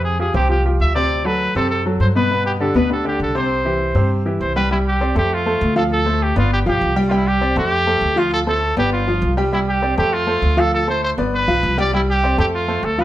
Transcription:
Already playing: upright bass F2, grand piano C3 C4 C5
0.04 trumpet G#4
0.19 grand piano F3 F4 G4, trumpet G#4
0.34 upright bass C2, grand piano C3 C4 C5, trumpet G4
0.49 grand piano F3 F4 G4, trumpet G4
0.65 grand piano F3 F4 G4
0.80 upright bass D2, trumpet E5
0.95 grand piano C3 C4 C5, trumpet D5
1.25 grand piano F#3 F#4 A4, trumpet B4
1.55 upright bass F#2, grand piano C3 C4 C5, trumpet A4
1.70 trumpet A4
1.86 grand piano F#3 F#4 A4
2.00 upright bass G2, trumpet C5
2.16 grand piano B2 B3 B4, trumpet B4
2.31 grand piano B2 B3 B4
2.46 trumpet G4
2.60 grand piano D3 D4 G4, trumpet A4
2.74 upright bass D2, grand piano B2 B3 B4, trumpet B4
2.90 grand piano D3 D4 G4, trumpet A4
3.05 grand piano D3 D4 G4, trumpet G4
3.20 upright bass C2, trumpet A4
3.35 grand piano C3 C4 C5, trumpet C5
3.65 grand piano E3 E4 G4
3.95 upright bass G2, grand piano C3 C4 C5
4.26 grand piano E3 E4 G4
4.41 upright bass C2, trumpet C5
4.56 grand piano G3 G4 G5, trumpet B4
4.71 grand piano G3 G4 G5, trumpet E4
4.87 trumpet G4
5.01 grand piano C4 C5 D5
5.15 upright bass F2, grand piano A3 A4 C5, trumpet G4
5.34 trumpet F4
5.46 grand piano A3 A4 C5
5.61 upright bass D2
5.76 grand piano F3 F4 F5, trumpet A4
5.92 trumpet A4
6.06 grand piano A3 A4 C5
6.23 trumpet G4
6.36 upright bass G1, grand piano B3 B4 D5, trumpet F4
6.53 trumpet G4
6.66 upright bass B1, grand piano F3 F4 F5, trumpet G4
6.81 upright bass C2
6.96 grand piano G3 G4 G5
7.08 grand piano G3 G4 G5, trumpet F4
7.13 trumpet E4
7.28 trumpet G4
7.41 grand piano C4 C5 D5
7.56 upright bass F2, grand piano A3 A4 C5, trumpet G4
7.87 grand piano A3 A4 C5
8.01 upright bass D2
8.16 grand piano F3 F4 F5, trumpet F4
8.33 trumpet A4
8.47 grand piano A3 A4 C5, trumpet A4
8.77 upright bass G1, grand piano B3 B4 D5, trumpet G4
8.93 trumpet F4
9.07 grand piano F3 F4 F5
9.22 upright bass C2
9.37 grand piano G3 G4 G5
9.52 grand piano G3 G4 G5, trumpet E4
9.68 trumpet G4
9.82 grand piano C4 C5 D5
9.97 upright bass F2, grand piano A3 A4 C5, trumpet G4
10.13 trumpet F4
10.27 grand piano A3 A4 C5
10.42 upright bass D2
10.57 grand piano F3 F4 F5, trumpet A4
10.75 trumpet A4
10.87 grand piano A3 A4 C5, trumpet C5
11.05 trumpet C5
11.18 upright bass G1, grand piano B3 B4 D5
11.35 trumpet B4
11.48 upright bass B1, grand piano F3 F4 F5
11.63 upright bass C2
11.78 grand piano G3 G4 G5, trumpet D5
11.93 grand piano G3 G4 G5, trumpet E4
12.10 trumpet G4
12.23 grand piano C4 C5 D5
12.38 upright bass F2, grand piano A3 A4 C5, trumpet G4
12.55 trumpet F4
12.68 grand piano A3 A4 C5
12.83 upright bass D2, trumpet A4
12.98 grand piano F3 F4 F5, trumpet B4

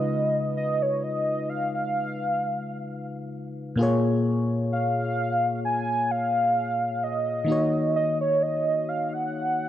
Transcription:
Already playing: fm electric piano C#3 G#3 D#4 F4 B4, soft synth lead D#5
0.57 soft synth lead D#5
0.82 soft synth lead C#5
1.03 soft synth lead D#5
1.49 soft synth lead F5
1.74 soft synth lead F5
3.76 fm electric piano A#2 A#3 F4
3.81 fm electric piano G#4 C#5
4.72 soft synth lead F5
5.65 soft synth lead G#5
6.11 soft synth lead F5
7.03 soft synth lead D#5
7.44 fm electric piano D#3 A#3 D#4
7.50 fm electric piano F#4 C#5
7.96 soft synth lead D#5
8.21 soft synth lead C#5
8.42 soft synth lead D#5
8.89 soft synth lead F5
9.13 soft synth lead F#5

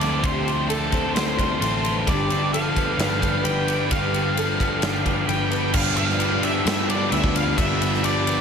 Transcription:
Already playing: picked electric bass D2, overdriven electric guitar D3 F3 A3 C4 D4 A4
0.00 overdriven electric guitar C4 F4, twelve-string acoustic guitar B4, lead electric guitar D5, snare, ride
0.23 picked electric bass D2, overdriven electric guitar D3 F3 A3 D4, twelve-string acoustic guitar G4, lead electric guitar C5, kick, ride
0.45 overdriven electric guitar F3 A3, ride
0.68 overdriven electric guitar F3 C4, twelve-string acoustic guitar A4, lead electric guitar A4, ride
0.92 overdriven electric guitar D3 C4, kick, ride
1.14 picked electric bass D2, overdriven electric guitar A3 D4, twelve-string acoustic guitar B4, lead electric guitar C5, snare, ride
1.38 overdriven electric guitar C4 F4, twelve-string acoustic guitar C5, kick, ride
1.61 picked electric bass A1, overdriven electric guitar C4 A4, lead electric guitar C5, ride
1.83 overdriven electric guitar C4 F4, twelve-string acoustic guitar B4, ride
2.07 picked electric bass G1, overdriven electric guitar G2 D3 F3 B3 D4, twelve-string acoustic guitar G4, lead electric guitar D5, kick, ride
2.30 overdriven electric guitar D3 G3, ride
2.53 overdriven electric guitar F3 B3, twelve-string acoustic guitar A4, lead electric guitar F5, ride
2.75 overdriven electric guitar F3 B3, kick, ride
2.98 picked electric bass G1, overdriven electric guitar G3 D4, twelve-string acoustic guitar B4, lead electric guitar F5, snare, ride
3.22 overdriven electric guitar B3 G4, twelve-string acoustic guitar B4, kick, ride
3.43 picked electric bass G1, overdriven electric guitar B3 G4, lead electric guitar G5, ride
3.66 overdriven electric guitar B3 G4, twelve-string acoustic guitar B4, ride
3.91 picked electric bass G1, overdriven electric guitar G2 D3 F3 B3 D4, twelve-string acoustic guitar G4, lead electric guitar F5, kick, ride
4.12 overdriven electric guitar D3 G3, ride
4.35 overdriven electric guitar F3 B3, twelve-string acoustic guitar A4, ride
4.57 overdriven electric guitar F3 B3, kick, ride
4.82 picked electric bass G1, overdriven electric guitar G3 D4, twelve-string acoustic guitar B4, snare, ride
5.05 overdriven electric guitar B3 G4, twelve-string acoustic guitar B4, kick, ride
5.27 picked electric bass G1, overdriven electric guitar B3 G4, lead electric guitar G5, ride
5.49 overdriven electric guitar B3 G4, twelve-string acoustic guitar B4, ride
5.72 picked electric bass G1, overdriven electric guitar G2 D3 F3 B3 D4 G4, analog synth pad F4 G4 D5 B5, lead electric guitar F5, kick, crash
5.97 lead electric guitar F5, ride
6.10 snare
6.18 overdriven electric guitar D3 F3 B3 D4, ride
6.22 overdriven electric guitar G4
6.42 overdriven electric guitar F3 B3 D4 G4, lead electric guitar E5, ride
6.64 overdriven electric guitar G2 D3 F3 B3 D4, picked electric bass G2, lead electric guitar E5, snare, ride
6.88 overdriven electric guitar F3 B3 D4 G4, lead electric guitar D5, ride
7.11 picked electric bass D2, overdriven electric guitar G2 D3 F3 B3 D4 G4, lead electric guitar E5, ride
7.24 kick
7.36 lead electric guitar F5, ride
7.56 picked electric bass G1, overdriven electric guitar G2 D3 F3 B3 D4 G4, lead electric guitar E5, kick, ride
7.82 ride
7.94 snare
8.02 overdriven electric guitar D3 F3 B3 D4, lead electric guitar D5, ride
8.06 overdriven electric guitar G4
8.25 overdriven electric guitar F3 B3 D4 G4, ride

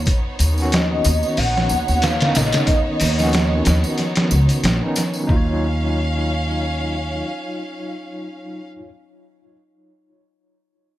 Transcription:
0.06 violin section B3 D#4 C#5, kick, closed hi-hat, tambourine
0.39 upright bass D#2, closed hi-hat, tambourine
0.53 tine electric piano D#3 B3
0.58 tine electric piano C#4, tambourine
0.62 tine electric piano F#4
0.72 soft synth lead D#5, snare, closed hi-hat, tambourine
1.04 upright bass D#2, closed hi-hat, tambourine
1.23 tambourine
1.37 upright bass A#1, soft synth lead F#5, open hi-hat, tambourine
1.57 snare
1.69 upright bass D#2, tambourine
1.88 upright bass D#2, tambourine
2.02 soft synth lead F5, snare, closed hi-hat, tambourine
2.16 tine electric piano D#3 B3
2.20 tine electric piano C#4, snare, closed hi-hat
2.25 tine electric piano D#4
2.35 upright bass A#1, soft synth lead D#5, snare, closed hi-hat, tambourine
2.53 snare, closed hi-hat, tambourine
2.67 kick, closed hi-hat, tambourine
3.00 upright bass D#2, open hi-hat, tambourine
3.14 tine electric piano D#3 B3
3.19 tine electric piano C#4, snare, tambourine
3.24 tine electric piano F#4
3.33 snare, closed hi-hat, tambourine
3.65 upright bass D#2, snare, closed hi-hat, tambourine
3.84 tambourine
3.98 snare, closed hi-hat, tambourine
4.16 snare, closed hi-hat
4.31 upright bass C#2, tambourine
4.49 closed hi-hat, tambourine
4.63 upright bass A#1, snare, closed hi-hat, tambourine
4.79 tine electric piano D#3 B3 C#4
4.84 tine electric piano D#4
4.96 snare, closed hi-hat, tambourine
5.14 tambourine
5.23 tine electric piano F#3
5.27 upright bass D#2, violin section C#4 F5, tine electric piano D#4, kick
5.32 tine electric piano F4
5.37 tine electric piano C#5

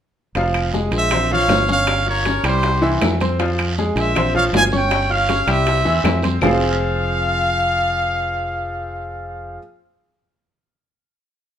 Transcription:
0.35 fingered electric bass F1, grand piano F3 F4 F5, high bongo, high conga, high timbale, long guiro
0.54 high bongo, high conga, high timbale, claves
0.73 grand piano G#3 G#4 G#5, high bongo, high conga, low timbale, short guiro
0.91 fingered electric bass A#1, trumpet section C5, high bongo, high conga, high timbale, short guiro
0.95 trumpet section E5
1.11 grand piano C4 C5 C6, high bongo, high conga, low conga, high timbale, long guiro, claves
1.31 grand piano F3 F4 F5, trumpet section C#5 F5, high bongo, high conga, low conga
1.48 fingered electric bass G1, high bongo, low bongo, high conga, high timbale, low timbale, short guiro
1.68 grand piano C#4 C#5 C#6, trumpet section C#5 F5, high conga, short guiro
1.87 high bongo, high conga, high timbale, long guiro, claves
2.06 grand piano F4 F5 F6, trumpet section A#4 C#5, high bongo, high conga
2.25 grand piano C#4 C#5 C#6, high bongo, high conga, high timbale, low timbale, short guiro
2.43 fingered electric bass C2, grand piano G3 G4 G5, trumpet section G4 C5, high conga, high timbale, short guiro, claves
2.63 high bongo, high conga, high timbale, long guiro
2.82 grand piano E3 E4 E5, high bongo, high conga
3.01 fingered electric bass F2, high bongo, low bongo, high conga, high timbale, low timbale, short guiro, claves
3.21 grand piano C4 C5 C6, high bongo, high conga, high timbale, short guiro
3.39 grand piano F3 F4 F5, high bongo, high conga, high timbale, long guiro
3.59 high bongo, high conga, high timbale, claves
3.77 grand piano G#3 G#4 G#5, high bongo, high conga, low timbale, short guiro
3.96 fingered electric bass A#1, trumpet section C5 E5, high bongo, high conga, high timbale, short guiro
4.15 grand piano C4 C5 C6, high bongo, high conga, low conga, high timbale, long guiro, claves
4.35 grand piano F3 F4 F5, trumpet section C#5 F5, high bongo, high conga, low conga
4.53 fingered electric bass G1, trumpet section F5 G#5, high bongo, low bongo, high conga, high timbale, low timbale, short guiro
4.72 grand piano C#4 C#5 C#6, trumpet section C#5 G5, high conga, short guiro
4.91 high bongo, high conga, high timbale, long guiro, claves
5.10 grand piano F4 F5 F6, trumpet section C#5 F5, high bongo, high conga
5.29 grand piano C#4 C#5 C#6, high bongo, high conga, high timbale, low timbale, short guiro
5.47 fingered electric bass C2, grand piano G3 G4 G5, trumpet section C5 E5, high conga, high timbale, short guiro, claves
5.67 high bongo, high conga, high timbale, long guiro
5.85 fingered electric bass E2, grand piano E3 E4 E5, high bongo, high conga
6.04 fingered electric bass F2, high bongo, low bongo, high conga, high timbale, low timbale, short guiro, claves
6.22 grand piano C4 C5 C6, high bongo, high conga, high timbale, short guiro
6.41 fingered electric bass F1, grand piano F3 C4 F4 G#4 C5 F5, trumpet section F5, low bongo, low conga, low timbale, long guiro, claves

